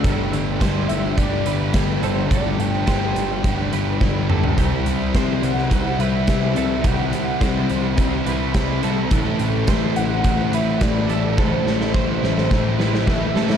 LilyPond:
<<
  \new Staff \with { instrumentName = "Soft synth lead" } { \time 4/4 \key g \major \tempo 4 = 106 r4. e''8 d''4 r8 c''8 | d''8 g''2. r8 | r4. fis''4 e''8 e''4 | fis''2 r2 |
r4. fis''4 e''8 d''4 | c''2. e''4 | }
  \new Staff \with { instrumentName = "Clean electric guitar" } { \time 4/4 \key g \major a'4 c''4 r8 b'4 a'8 | a'4 c''4 r8 b'4 a'8 | g'4 c''4 r8 b'4 a'8 | g'4 c''4 r8 b'4 a'8 |
a'4 c''4 r8 b'4 a'8 | a'4 c''4 r8 b'4 a'8 | }
  \new Staff \with { instrumentName = "Overdriven electric guitar" } { \time 4/4 \key g \major <g a d' g'>4 <g a d' g'>4 <g a d' g'>8 <a d' g'>8 <g a d' g'>8 <a d' g'>8 | <g a d' g'>4 <g a d' g'>4 <g a d' g'>8 <a d' g'>8 <g a d' g'>8 <a d' g'>8 | <c e g c' e'>4 <e g c' e'>4 <e g c' e'>8 <g c' e'>8 <e g c' e'>8 <g c' e'>8 | <c e g c' e'>4 <e g c' e'>4 <e g c' e'>8 <g c' e'>8 <e g c' e'>8 <g c' e'>8 |
<a, e a c' e'>4 <e a c' e'>4 <e a c' e'>8 <a c' e'>8 <e a c' e'>8 <a c' e'>8 | <a, e a c' e'>4 <e a c' e'>4 <e a c' e'>8 <a c' e'>8 <e a c' e'>8 <a c' e'>8 | }
  \new Staff \with { instrumentName = "Distorted electric guitar" } { \clef bass \time 4/4 \key g \major <g, d g>4 <g, d g>4 <g, d g>4. <d g>8 | <g, d g>4 <g, d g>4 <g, d g>4. <d g>8 | <c g c'>4 <c g c'>4 <c g c'>4. <g c'>8 | <c g c'>4 <c g c'>4 <c g c'>4. <g c'>8 |
<a, e a>4 <a, e a>4 <a, e a>4. <e a>8 | <a, e a>4 <a, e a>4 <a, e a>4. <e a>8 | }
  \new Staff \with { instrumentName = "Picked electric bass" } { \clef bass \time 4/4 \key g \major g,,8 g,,8 g,,8 g,,8 g,,8 g,,8 g,,8 g,,8 | g,,8 g,,8 g,,8 g,,8 g,,8 g,,8 g,,8 g,,8 | c,8 c,8 c,8 c,8 c,8 c,8 c,8 c,8 | c,8 c,8 c,8 c,8 c,8 c,8 c,8 c,8 |
a,,8 a,,8 a,,8 a,,8 a,,8 a,,8 a,,8 a,,8 | a,,8 a,,8 a,,8 a,,8 a,,8 a,,8 a,,8 a,,8 | }
  \new DrumStaff \with { instrumentName = "Drums" } \drummode { \time 4/4 <hh bd>8 hh8 <hh bd sn>8 hh8 <hh bd>8 hh8 <hh bd sn>8 hh8 | <hh bd>8 hh8 <hh bd sn>8 hh8 <hh bd>8 hh8 <bd sn>8 toml16 tomfh16 | <hh bd>8 hh8 <hh bd sn>8 hh16 sn16 <hh bd>8 hh8 <hh bd sn>8 hh8 | <hh bd>8 hh8 <hh bd sn>8 hh8 <hh bd>8 hh8 <hh bd sn>8 hh8 |
<hh bd>8 hh8 <hh bd sn>8 hh8 <hh bd>8 hh8 <hh bd sn>8 hh8 | <bd sn>8 sn16 sn16 <bd sn>8 sn16 sn16 <bd sn>8 sn16 sn16 <bd sn>8 sn16 sn16 | }
>>